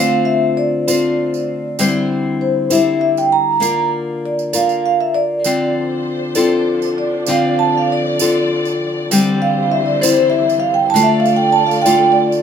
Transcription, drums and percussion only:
0.88 tambourine
1.34 tambourine
1.79 tambourine
2.71 tambourine
3.17 tambourine
3.62 tambourine
4.39 tambourine
4.53 tambourine
4.69 tambourine
5.44 tambourine
6.35 tambourine
6.82 tambourine
7.26 tambourine
8.19 tambourine
8.65 tambourine
9.11 tambourine
10.03 tambourine
10.50 tambourine
10.96 tambourine
11.26 tambourine
11.71 tambourine
11.86 tambourine
12.32 tambourine

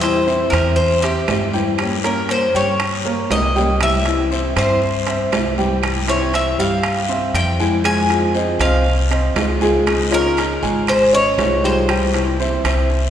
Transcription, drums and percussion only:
0.03 high timbale
0.28 short guiro
0.52 high timbale, short guiro, claves
0.78 long guiro
1.04 high timbale
1.28 high timbale, low timbale, short guiro, claves
1.53 short guiro
1.78 high timbale, long guiro, claves
2.04 high timbale
2.29 high timbale, short guiro
2.55 short guiro
2.79 high timbale, long guiro, claves
3.31 high timbale, low timbale, short guiro
3.56 short guiro
3.81 high timbale, long guiro, claves
4.05 high timbale
4.32 short guiro
4.56 high timbale, short guiro, claves
4.82 long guiro
5.07 high timbale
5.32 high timbale, low timbale, short guiro, claves
5.58 short guiro
5.83 high timbale, long guiro, claves
6.08 high timbale
6.34 high timbale, short guiro
6.59 short guiro
6.83 high timbale, long guiro, claves
7.35 high timbale, short guiro
7.60 short guiro
7.84 high timbale, long guiro, claves
8.10 high timbale
8.35 short guiro
8.60 high timbale, short guiro, claves
8.84 long guiro
9.12 high timbale
9.36 high timbale, low timbale, short guiro, claves
9.61 short guiro
9.87 high timbale, long guiro, claves
10.12 high timbale
10.37 high timbale, short guiro
10.63 short guiro
10.87 high timbale, long guiro, claves
11.38 high timbale, low timbale, short guiro
11.64 short guiro
11.89 high timbale, long guiro, claves
12.14 high timbale
12.40 short guiro
12.65 high timbale, short guiro, claves
12.90 long guiro

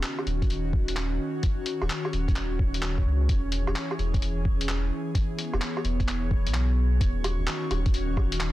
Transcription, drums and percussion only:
0.03 clap, closed hi-hat
0.19 low woodblock
0.27 closed hi-hat
0.42 kick, closed hi-hat
0.50 closed hi-hat
0.73 kick
0.88 closed hi-hat
0.97 clap, closed hi-hat
1.43 kick, closed hi-hat
1.66 closed hi-hat
1.82 low woodblock
1.90 clap, closed hi-hat
2.05 low woodblock
2.13 closed hi-hat
2.28 kick, closed hi-hat
2.36 clap, closed hi-hat
2.59 kick
2.74 closed hi-hat
2.82 clap, closed hi-hat
2.98 kick
3.29 kick, closed hi-hat
3.52 closed hi-hat
3.67 low woodblock
3.76 clap, closed hi-hat
3.91 low woodblock
3.99 closed hi-hat
4.14 kick, closed hi-hat
4.22 closed hi-hat
4.45 kick
4.61 closed hi-hat
4.69 clap, closed hi-hat
5.15 kick, closed hi-hat
5.39 closed hi-hat
5.54 low woodblock
5.62 clap, closed hi-hat
5.77 low woodblock
5.85 closed hi-hat
6.00 kick, closed hi-hat
6.08 clap, closed hi-hat
6.31 kick
6.47 closed hi-hat
6.54 clap, closed hi-hat
7.01 kick, closed hi-hat
7.24 closed hi-hat, low woodblock
7.47 clap, closed hi-hat
7.71 closed hi-hat, low woodblock
7.86 kick, closed hi-hat
7.94 closed hi-hat
8.17 kick, low woodblock
8.32 closed hi-hat
8.40 clap, closed hi-hat

